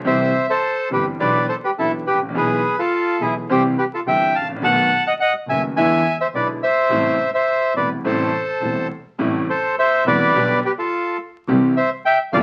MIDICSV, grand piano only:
0, 0, Header, 1, 2, 480
1, 0, Start_track
1, 0, Key_signature, 0, "minor"
1, 0, Tempo, 570885
1, 42, Time_signature, 4, 2, 24, 8
1, 10449, End_track
2, 0, Start_track
2, 0, Title_t, "Grand piano"
2, 0, Program_c, 0, 0
2, 36, Note_on_c, 0, 52, 68
2, 37, Note_on_c, 0, 48, 83
2, 37, Note_on_c, 0, 55, 63
2, 39, Note_on_c, 0, 60, 62
2, 41, Note_on_c, 0, 36, 86
2, 41, Note_on_c, 0, 67, 78
2, 242, Note_off_c, 0, 48, 0
2, 242, Note_off_c, 0, 52, 0
2, 242, Note_off_c, 0, 55, 0
2, 243, Note_off_c, 0, 60, 0
2, 244, Note_off_c, 0, 36, 0
2, 244, Note_off_c, 0, 67, 0
2, 763, Note_on_c, 0, 31, 50
2, 764, Note_on_c, 0, 60, 42
2, 765, Note_on_c, 0, 52, 45
2, 766, Note_on_c, 0, 43, 54
2, 767, Note_on_c, 0, 55, 43
2, 768, Note_on_c, 0, 67, 51
2, 967, Note_off_c, 0, 31, 0
2, 968, Note_off_c, 0, 52, 0
2, 968, Note_off_c, 0, 60, 0
2, 969, Note_off_c, 0, 43, 0
2, 969, Note_off_c, 0, 55, 0
2, 970, Note_off_c, 0, 67, 0
2, 1006, Note_on_c, 0, 59, 67
2, 1007, Note_on_c, 0, 35, 89
2, 1007, Note_on_c, 0, 52, 74
2, 1007, Note_on_c, 0, 62, 68
2, 1009, Note_on_c, 0, 47, 93
2, 1010, Note_on_c, 0, 67, 81
2, 1209, Note_off_c, 0, 59, 0
2, 1210, Note_off_c, 0, 35, 0
2, 1210, Note_off_c, 0, 52, 0
2, 1210, Note_off_c, 0, 62, 0
2, 1211, Note_off_c, 0, 47, 0
2, 1211, Note_off_c, 0, 67, 0
2, 1499, Note_on_c, 0, 62, 42
2, 1500, Note_on_c, 0, 52, 48
2, 1500, Note_on_c, 0, 59, 44
2, 1501, Note_on_c, 0, 35, 57
2, 1505, Note_on_c, 0, 47, 57
2, 1506, Note_on_c, 0, 67, 54
2, 1697, Note_off_c, 0, 35, 0
2, 1697, Note_off_c, 0, 52, 0
2, 1697, Note_off_c, 0, 59, 0
2, 1697, Note_off_c, 0, 62, 0
2, 1700, Note_off_c, 0, 47, 0
2, 1700, Note_off_c, 0, 67, 0
2, 1798, Note_on_c, 0, 32, 45
2, 1854, Note_off_c, 0, 32, 0
2, 1863, Note_on_c, 0, 33, 62
2, 1917, Note_off_c, 0, 33, 0
2, 1921, Note_on_c, 0, 34, 76
2, 1970, Note_on_c, 0, 52, 77
2, 1971, Note_on_c, 0, 56, 68
2, 1972, Note_on_c, 0, 35, 82
2, 1974, Note_on_c, 0, 47, 90
2, 1975, Note_on_c, 0, 59, 67
2, 1975, Note_on_c, 0, 68, 82
2, 1976, Note_off_c, 0, 34, 0
2, 2172, Note_off_c, 0, 52, 0
2, 2173, Note_off_c, 0, 35, 0
2, 2173, Note_off_c, 0, 56, 0
2, 2174, Note_off_c, 0, 47, 0
2, 2174, Note_off_c, 0, 68, 0
2, 2175, Note_off_c, 0, 59, 0
2, 2696, Note_on_c, 0, 56, 46
2, 2697, Note_on_c, 0, 35, 58
2, 2697, Note_on_c, 0, 52, 49
2, 2699, Note_on_c, 0, 59, 43
2, 2700, Note_on_c, 0, 47, 54
2, 2702, Note_on_c, 0, 68, 54
2, 2895, Note_off_c, 0, 35, 0
2, 2895, Note_off_c, 0, 52, 0
2, 2895, Note_off_c, 0, 56, 0
2, 2896, Note_off_c, 0, 47, 0
2, 2896, Note_off_c, 0, 59, 0
2, 2897, Note_off_c, 0, 68, 0
2, 2935, Note_on_c, 0, 52, 75
2, 2937, Note_on_c, 0, 55, 68
2, 2937, Note_on_c, 0, 60, 69
2, 2939, Note_on_c, 0, 36, 88
2, 2939, Note_on_c, 0, 48, 91
2, 2940, Note_on_c, 0, 67, 81
2, 3134, Note_off_c, 0, 52, 0
2, 3135, Note_off_c, 0, 48, 0
2, 3135, Note_off_c, 0, 55, 0
2, 3135, Note_off_c, 0, 60, 0
2, 3136, Note_off_c, 0, 36, 0
2, 3136, Note_off_c, 0, 67, 0
2, 3417, Note_on_c, 0, 55, 45
2, 3418, Note_on_c, 0, 31, 57
2, 3418, Note_on_c, 0, 52, 53
2, 3418, Note_on_c, 0, 60, 47
2, 3421, Note_on_c, 0, 43, 61
2, 3423, Note_on_c, 0, 67, 56
2, 3614, Note_off_c, 0, 55, 0
2, 3615, Note_off_c, 0, 31, 0
2, 3615, Note_off_c, 0, 52, 0
2, 3615, Note_off_c, 0, 60, 0
2, 3617, Note_off_c, 0, 43, 0
2, 3617, Note_off_c, 0, 67, 0
2, 3715, Note_on_c, 0, 32, 47
2, 3772, Note_off_c, 0, 32, 0
2, 3776, Note_on_c, 0, 33, 66
2, 3831, Note_on_c, 0, 34, 77
2, 3832, Note_off_c, 0, 33, 0
2, 3884, Note_on_c, 0, 47, 89
2, 3884, Note_on_c, 0, 51, 72
2, 3888, Note_on_c, 0, 57, 66
2, 3889, Note_on_c, 0, 35, 88
2, 3889, Note_on_c, 0, 59, 72
2, 3889, Note_on_c, 0, 66, 81
2, 3890, Note_off_c, 0, 34, 0
2, 4088, Note_off_c, 0, 47, 0
2, 4088, Note_off_c, 0, 51, 0
2, 4089, Note_off_c, 0, 57, 0
2, 4090, Note_off_c, 0, 35, 0
2, 4090, Note_off_c, 0, 59, 0
2, 4090, Note_off_c, 0, 66, 0
2, 4609, Note_on_c, 0, 51, 49
2, 4611, Note_on_c, 0, 42, 56
2, 4611, Note_on_c, 0, 57, 44
2, 4611, Note_on_c, 0, 59, 43
2, 4613, Note_on_c, 0, 30, 54
2, 4614, Note_on_c, 0, 66, 54
2, 4809, Note_off_c, 0, 51, 0
2, 4810, Note_off_c, 0, 57, 0
2, 4810, Note_off_c, 0, 59, 0
2, 4811, Note_off_c, 0, 42, 0
2, 4812, Note_off_c, 0, 30, 0
2, 4812, Note_off_c, 0, 66, 0
2, 4848, Note_on_c, 0, 50, 77
2, 4849, Note_on_c, 0, 56, 74
2, 4850, Note_on_c, 0, 40, 88
2, 4852, Note_on_c, 0, 64, 91
2, 4853, Note_on_c, 0, 59, 65
2, 4854, Note_on_c, 0, 52, 89
2, 5048, Note_off_c, 0, 50, 0
2, 5049, Note_off_c, 0, 56, 0
2, 5050, Note_off_c, 0, 40, 0
2, 5050, Note_off_c, 0, 64, 0
2, 5051, Note_off_c, 0, 59, 0
2, 5052, Note_off_c, 0, 52, 0
2, 5334, Note_on_c, 0, 50, 50
2, 5336, Note_on_c, 0, 35, 57
2, 5339, Note_on_c, 0, 47, 58
2, 5339, Note_on_c, 0, 56, 47
2, 5340, Note_on_c, 0, 59, 47
2, 5343, Note_on_c, 0, 64, 57
2, 5531, Note_off_c, 0, 50, 0
2, 5532, Note_off_c, 0, 35, 0
2, 5533, Note_off_c, 0, 47, 0
2, 5533, Note_off_c, 0, 56, 0
2, 5534, Note_off_c, 0, 59, 0
2, 5535, Note_off_c, 0, 64, 0
2, 5803, Note_on_c, 0, 45, 85
2, 5804, Note_on_c, 0, 33, 88
2, 5804, Note_on_c, 0, 55, 66
2, 5805, Note_on_c, 0, 48, 77
2, 5806, Note_on_c, 0, 57, 68
2, 5811, Note_on_c, 0, 64, 85
2, 6005, Note_off_c, 0, 33, 0
2, 6005, Note_off_c, 0, 45, 0
2, 6005, Note_off_c, 0, 55, 0
2, 6006, Note_off_c, 0, 48, 0
2, 6006, Note_off_c, 0, 57, 0
2, 6009, Note_off_c, 0, 64, 0
2, 6524, Note_on_c, 0, 48, 50
2, 6526, Note_on_c, 0, 55, 41
2, 6528, Note_on_c, 0, 28, 53
2, 6528, Note_on_c, 0, 57, 43
2, 6530, Note_on_c, 0, 40, 53
2, 6531, Note_on_c, 0, 64, 48
2, 6725, Note_off_c, 0, 48, 0
2, 6726, Note_off_c, 0, 55, 0
2, 6727, Note_off_c, 0, 28, 0
2, 6727, Note_off_c, 0, 57, 0
2, 6728, Note_off_c, 0, 40, 0
2, 6728, Note_off_c, 0, 64, 0
2, 6759, Note_on_c, 0, 48, 73
2, 6763, Note_on_c, 0, 33, 83
2, 6764, Note_on_c, 0, 45, 84
2, 6765, Note_on_c, 0, 55, 68
2, 6767, Note_on_c, 0, 57, 71
2, 6767, Note_on_c, 0, 64, 88
2, 6963, Note_off_c, 0, 48, 0
2, 6965, Note_off_c, 0, 33, 0
2, 6965, Note_off_c, 0, 45, 0
2, 6966, Note_off_c, 0, 55, 0
2, 6967, Note_off_c, 0, 57, 0
2, 6967, Note_off_c, 0, 64, 0
2, 7240, Note_on_c, 0, 28, 58
2, 7240, Note_on_c, 0, 48, 46
2, 7241, Note_on_c, 0, 40, 55
2, 7243, Note_on_c, 0, 57, 40
2, 7244, Note_on_c, 0, 55, 45
2, 7245, Note_on_c, 0, 64, 55
2, 7445, Note_off_c, 0, 48, 0
2, 7446, Note_off_c, 0, 28, 0
2, 7446, Note_off_c, 0, 40, 0
2, 7447, Note_off_c, 0, 55, 0
2, 7447, Note_off_c, 0, 57, 0
2, 7448, Note_off_c, 0, 64, 0
2, 7722, Note_on_c, 0, 48, 73
2, 7724, Note_on_c, 0, 45, 94
2, 7726, Note_on_c, 0, 55, 70
2, 7727, Note_on_c, 0, 57, 71
2, 7728, Note_on_c, 0, 33, 85
2, 7728, Note_on_c, 0, 64, 86
2, 7927, Note_off_c, 0, 48, 0
2, 7928, Note_off_c, 0, 45, 0
2, 7929, Note_off_c, 0, 55, 0
2, 7929, Note_off_c, 0, 57, 0
2, 7930, Note_off_c, 0, 33, 0
2, 7930, Note_off_c, 0, 64, 0
2, 8455, Note_on_c, 0, 48, 76
2, 8458, Note_on_c, 0, 28, 91
2, 8458, Note_on_c, 0, 40, 84
2, 8459, Note_on_c, 0, 55, 70
2, 8460, Note_on_c, 0, 64, 83
2, 8462, Note_on_c, 0, 57, 65
2, 8654, Note_off_c, 0, 48, 0
2, 8655, Note_off_c, 0, 28, 0
2, 8655, Note_off_c, 0, 40, 0
2, 8656, Note_off_c, 0, 55, 0
2, 8656, Note_off_c, 0, 64, 0
2, 8657, Note_off_c, 0, 57, 0
2, 8694, Note_on_c, 0, 50, 75
2, 8695, Note_on_c, 0, 55, 72
2, 8697, Note_on_c, 0, 35, 96
2, 8697, Note_on_c, 0, 59, 76
2, 8699, Note_on_c, 0, 47, 85
2, 8702, Note_on_c, 0, 67, 87
2, 8893, Note_off_c, 0, 50, 0
2, 8894, Note_off_c, 0, 35, 0
2, 8894, Note_off_c, 0, 55, 0
2, 8895, Note_off_c, 0, 59, 0
2, 8896, Note_off_c, 0, 47, 0
2, 8897, Note_off_c, 0, 67, 0
2, 9654, Note_on_c, 0, 60, 67
2, 9655, Note_on_c, 0, 52, 76
2, 9655, Note_on_c, 0, 55, 72
2, 9658, Note_on_c, 0, 36, 91
2, 9658, Note_on_c, 0, 48, 91
2, 9659, Note_on_c, 0, 67, 84
2, 9852, Note_off_c, 0, 52, 0
2, 9852, Note_off_c, 0, 55, 0
2, 9852, Note_off_c, 0, 60, 0
2, 9853, Note_off_c, 0, 48, 0
2, 9854, Note_off_c, 0, 36, 0
2, 9854, Note_off_c, 0, 67, 0
2, 10366, Note_on_c, 0, 52, 78
2, 10368, Note_on_c, 0, 55, 69
2, 10369, Note_on_c, 0, 60, 69
2, 10370, Note_on_c, 0, 31, 90
2, 10371, Note_on_c, 0, 43, 89
2, 10374, Note_on_c, 0, 67, 80
2, 10449, Note_off_c, 0, 31, 0
2, 10449, Note_off_c, 0, 43, 0
2, 10449, Note_off_c, 0, 52, 0
2, 10449, Note_off_c, 0, 55, 0
2, 10449, Note_off_c, 0, 60, 0
2, 10449, Note_off_c, 0, 67, 0
2, 10449, End_track
0, 0, End_of_file